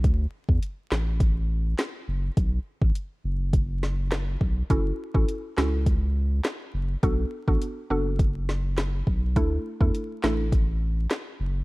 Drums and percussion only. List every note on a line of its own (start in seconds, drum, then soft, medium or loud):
0.04 kick loud
0.04 closed hi-hat medium
0.49 kick medium
0.63 closed hi-hat medium
0.92 snare loud
0.92 clap medium
1.20 kick loud
1.20 closed hi-hat medium
1.78 snare loud
1.78 clap medium
1.78 closed hi-hat medium
2.37 kick loud
2.37 closed hi-hat medium
2.82 kick medium
2.95 closed hi-hat medium
3.53 kick loud
3.53 closed hi-hat medium
3.83 snare medium
4.12 cross-stick medium
4.12 snare loud
4.12 clap medium
4.12 closed hi-hat medium
4.41 kick medium
4.70 kick loud
4.70 closed hi-hat medium
5.15 kick medium
5.29 closed hi-hat medium
5.58 snare loud
5.58 clap medium
5.86 kick loud
5.86 closed hi-hat medium
6.45 snare loud
6.45 clap medium
6.45 closed hi-hat medium
7.03 kick loud
7.03 closed hi-hat medium
7.48 kick medium
7.62 closed hi-hat medium
8.19 kick loud
8.19 closed hi-hat medium
8.49 snare medium
8.78 snare loud
8.78 clap medium
8.78 closed hi-hat medium
9.07 kick medium
9.36 kick loud
9.36 closed hi-hat medium
9.81 kick medium
9.95 closed hi-hat medium
10.24 snare loud
10.24 clap medium
10.52 kick loud
10.52 closed hi-hat medium
11.11 snare loud
11.11 clap medium
11.11 closed hi-hat medium